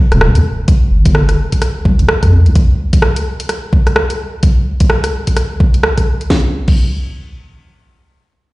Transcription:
0.12 D#1, cross-stick, closed hi-hat
0.21 cross-stick
0.35 D#2, closed hi-hat
0.68 kick, closed hi-hat
0.91 G1
1.05 kick, closed hi-hat
1.15 cross-stick
1.29 cross-stick, closed hi-hat
1.52 kick, closed hi-hat
1.62 cross-stick, closed hi-hat
1.85 C2, kick
1.99 A#1, closed hi-hat
2.08 cross-stick
2.23 F2, kick, cross-stick, closed hi-hat
2.46 C2, closed hi-hat
2.55 kick, closed hi-hat
2.93 kick, closed hi-hat
3.02 cross-stick
3.16 closed hi-hat
3.40 closed hi-hat
3.49 cross-stick, closed hi-hat
3.73 kick
3.87 cross-stick, closed hi-hat
3.96 cross-stick
4.10 closed hi-hat
4.43 kick, closed hi-hat
4.80 kick, closed hi-hat
4.90 cross-stick
5.04 cross-stick, closed hi-hat
5.27 kick, closed hi-hat
5.37 cross-stick, closed hi-hat
5.60 kick
5.74 closed hi-hat
5.83 cross-stick
5.98 kick, cross-stick, closed hi-hat
6.21 closed hi-hat
6.30 kick, snare
6.68 kick, crash

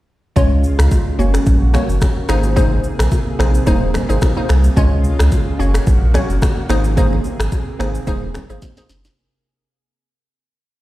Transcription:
0.36 C#2 C#3 G#3 C#4 F4 C#5, kick, low conga, shaker
0.64 shaker
0.79 C#2, finger snap, cross-stick, shaker
0.91 kick, high bongo, shaker
1.19 F#1 A#3 C#4 F#4 C#5, shaker
1.34 finger snap, cross-stick, shaker
1.46 A#1, kick, low conga, shaker
1.74 A#3 C#4 F#4 C#5, finger snap, cross-stick, low bongo, low conga, shaker
1.89 F#1, shaker
2.01 finger snap, kick, cross-stick, high bongo, low bongo, shaker
2.29 G#1 C3 A#3 D#4 G#4 C5, finger snap, cross-stick, shaker
2.43 high bongo, shaker
2.56 A#3 D#4 G#4 C5, kick, low conga, shaker
2.84 shaker
2.99 A#1, finger snap, cross-stick, shaker
3.11 kick, high bongo, shaker
3.39 A#1 A#3 D#4 G#4 C5, finger snap, cross-stick, shaker
3.54 shaker
3.67 D#1 A#3 D#4 G#4 C5, kick, low conga, shaker
3.94 finger snap, cross-stick, low bongo, low conga, shaker
4.09 G#1 A#3 D#4 G#4 C5, shaker
4.21 finger snap, kick, cross-stick, high bongo, low bongo, shaker
4.37 A#3 D#4 G#4 C5
4.49 C2, finger snap, cross-stick, shaker
4.64 high bongo, shaker
4.76 C#2 C#3 G#3 C#4 F4 C#5, kick, low conga, shaker
5.04 shaker
5.19 C#2, finger snap, cross-stick, shaker
5.32 kick, high bongo, shaker
5.59 F#1 A#3 C#4 F#4 C#5, shaker
5.74 finger snap, cross-stick, shaker
5.87 A#1, kick, low conga, shaker
6.14 A#3 C#4 F#4 C#5, finger snap, cross-stick, low bongo, low conga, shaker
6.30 F#1, shaker
6.42 finger snap, kick, cross-stick, high bongo, low bongo, shaker
6.69 G#1 C3 A#3 D#4 G#4 C5, finger snap, cross-stick, shaker
6.84 high bongo, shaker
6.97 A#3 D#4 G#4 C5, kick, low conga, shaker
7.13 low bongo
7.24 low bongo, shaker
7.40 G#1, finger snap, cross-stick, shaker
7.52 kick, high bongo, shaker
7.79 G#1 A#3 D#4 G#4 C5, finger snap, cross-stick, shaker
7.95 shaker
8.07 D#1 A#3 D#4 G#4 C5, kick, low conga, shaker
8.34 finger snap, cross-stick, low bongo, low conga, shaker
8.49 G#1 A#3 D#4 G#4 C5, shaker
8.62 kick, snare, high bongo, low bongo, shaker
8.77 A#3 D#4 G#4 C5, snare
8.89 F#1, snare, shaker
9.04 snare, high bongo, shaker

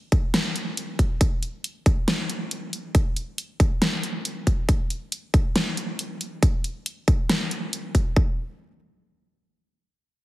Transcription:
0.12 kick, closed hi-hat
0.34 snare, closed hi-hat
0.56 closed hi-hat
0.77 closed hi-hat
0.99 kick, closed hi-hat
1.21 kick, closed hi-hat
1.43 closed hi-hat
1.64 closed hi-hat
1.86 kick, closed hi-hat
2.08 snare, closed hi-hat
2.30 closed hi-hat
2.51 closed hi-hat
2.73 closed hi-hat
2.95 kick, closed hi-hat
3.16 closed hi-hat
3.38 closed hi-hat
3.60 kick, closed hi-hat
3.82 snare, closed hi-hat
4.03 closed hi-hat
4.25 closed hi-hat
4.47 kick, closed hi-hat
4.69 kick, closed hi-hat
4.90 closed hi-hat
5.12 closed hi-hat
5.34 kick, closed hi-hat
5.56 snare, closed hi-hat
5.77 closed hi-hat
5.99 closed hi-hat
6.21 closed hi-hat
6.43 kick, closed hi-hat
6.64 closed hi-hat
6.86 closed hi-hat
7.08 kick, closed hi-hat
7.30 snare, closed hi-hat
7.51 closed hi-hat
7.73 closed hi-hat
7.95 kick, closed hi-hat
8.16 kick

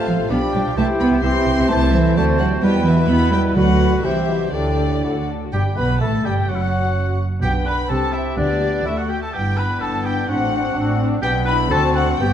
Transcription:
Already playing: C3 F4 A4 C5 F5
0.08 A1 F3 C5 F5
0.20 A1 F5
0.30 B1 F3 B3 D4 G4 D5 F5 G5 B5
0.53 B1 G3 D5 G5
0.66 B1 F5
0.77 C2 E3 A3 E4 G4 C5 E5 G5 A5
1.00 C2 B3 C5 B5
1.12 C2 E5
1.23 C2 E3 C4 E4 G4 C5 E5 G5 C6
1.46 C2 C5
1.58 C2 E5
1.70 C2 E3 A3 C4 E4 A4 C5 A5
1.82 E5
1.93 E3 C5 E5
2.06 E5
2.16 D2 D3 A3 F#4 C5 D5 A5
2.30 C5
2.39 C3 F#3 D5 F#5
2.52 C5
2.63 E2 B2 G3 B3 E4 G4 B4 G5 B5
2.75 B4
2.87 E3 G4 E5
2.98 B4
3.09 E2 B2 B3 E4 G4 B4 B5
3.21 B4
3.32 G3 G4 G5
3.43 B4
3.56 D2 D3 F#3 F#4 B4 D5 F#5 B5
3.68 B4
3.80 D5
3.92 B4
4.04 C2 C3 E3 E4 G4 C5 E5 G5
4.17 G4
4.29 B2 E4
4.42 G4
4.54 D2 A2 D3 D4 G4 A4 D5 G5
4.68 G4
4.81 A4
4.93 G4
5.04 D2 A2 F#4 A4 D5 F#5
5.18 F#4
5.30 A4
5.44 F#4
5.53 G1 G2 G3 G4 G5
5.76 B1 B2 B3 B4 B5
6.00 A1 A2 A3 A4 A5
6.25 G1 G2 G3 G4 G5
6.48 F#1 F#2 F#3 F#4 F#5
6.55 E4
6.62 F#4
7.42 B1 B2 B3 D4 G4 B4 G5
7.66 D4 B4 B5
7.89 C2 C3 C4 G4 A4 A5
8.13 C4 E4 G4 E5
8.37 D2 D3 B3 D4 D5
8.62 B3 G4
8.85 D2 D3 A3 E4 F#4 E5
8.97 F#4 F#5
9.08 A3 F#4 G4 G5
9.22 A4 A5
9.33 G1 G2 B3 D4 E4 G4 G5
9.57 B3 D4 B4 B5
9.81 G1 G2 A4 A5
10.05 B3 D4 G4 G5
10.28 A1 A2 C4 D4 F#4 F#5
10.52 C4 D4
10.76 A1 A2 C4 D4
10.99 C4 D4
11.22 B1 B2 B3 D4 G4 G5
11.45 E4 B4 B5
11.71 D2 D3 C4 F#4 A4 A5
11.95 F#4 F#5
12.20 G1 G2 B3 G4 G5

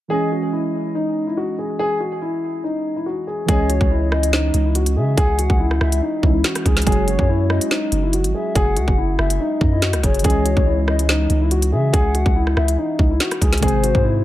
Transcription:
0.08 E3 G#3 C#4 G#4
0.13 D#5
0.32 F#4
0.53 E4
0.95 D#4
1.27 E4
1.37 F#4
1.58 G#4
1.79 G#4
2.00 F#4
2.22 E4
2.64 D#4
2.96 E4
3.06 F#4
3.27 G#4
3.46 C#2 E3 G#3 C#4 G#4 C#5, kick, closed hi-hat
3.51 D#5
3.70 F#4, closed hi-hat
3.81 C#2, kick
3.91 E4
4.12 D#5, cross-stick
4.23 closed hi-hat
4.33 D#4, snare
4.54 C#2, closed hi-hat
4.65 E4
4.75 F#4, closed hi-hat
4.86 closed hi-hat
4.96 C#3 G#4 E5
5.17 C#2 G#4 F#5, kick, closed hi-hat
5.39 F#4, closed hi-hat
5.50 C#2, kick
5.60 E4
5.71 cross-stick
5.81 C#2 E5, cross-stick
5.92 closed hi-hat
6.02 D#4
6.22 C#2 E3 G#3 C#4 E4, kick
6.34 E4
6.44 F#4, snare, closed hi-hat
6.55 cross-stick, closed hi-hat
6.65 C#2 G#4, kick, closed hi-hat
6.77 snare, closed hi-hat
6.82 F#3, closed hi-hat
6.86 F#1 G#3 C#4 F#4 G#4 C#5, kick, closed hi-hat
6.92 closed hi-hat
7.08 F#4, closed hi-hat
7.19 F#2, kick
7.29 E4
7.50 D#5, cross-stick
7.61 closed hi-hat
7.71 D#4, snare
7.92 F#1, closed hi-hat
8.03 E4
8.13 F#4, closed hi-hat
8.24 G#1, closed hi-hat
8.34 G#4 E5
8.55 F#1 G#4 F#5, kick, closed hi-hat
8.77 C#2 F#4, closed hi-hat
8.88 F#1, kick
8.98 E4
9.18 F#1 E5, cross-stick
9.30 closed hi-hat
9.40 D#4
9.61 F#2 D#5, kick
9.72 E4
9.82 F#4, snare, closed hi-hat
9.93 C#2, cross-stick, closed hi-hat
10.03 F#1 G#4 C#5, kick, closed hi-hat
10.14 closed hi-hat
10.19 E3, closed hi-hat
10.24 C#2 G#3 C#4 G#4 C#5 D#5, kick, closed hi-hat
10.30 closed hi-hat
10.45 F#4, closed hi-hat
10.57 C#2, kick
10.67 E4
10.88 D#5, cross-stick
10.99 closed hi-hat
11.09 D#4, snare
11.30 C#2, closed hi-hat
11.41 E4
11.51 F#4, closed hi-hat
11.62 closed hi-hat
11.72 C#3 G#4 E5
11.93 C#2 G#4 F#5, kick, closed hi-hat
12.15 F#4, closed hi-hat
12.26 C#2, kick
12.36 E4
12.47 cross-stick
12.57 C#2 E5, cross-stick
12.68 closed hi-hat
12.78 D#4
12.99 C#2, kick
13.11 E4
13.20 F#4, snare, closed hi-hat
13.31 cross-stick, closed hi-hat
13.41 C#2 G#4, kick, closed hi-hat
13.53 snare, closed hi-hat
13.58 C3 G#3, closed hi-hat
13.62 G#1 C4 G#4 C5, kick, closed hi-hat
13.68 closed hi-hat
13.83 F#4, closed hi-hat
13.95 G#2, kick
14.04 E4

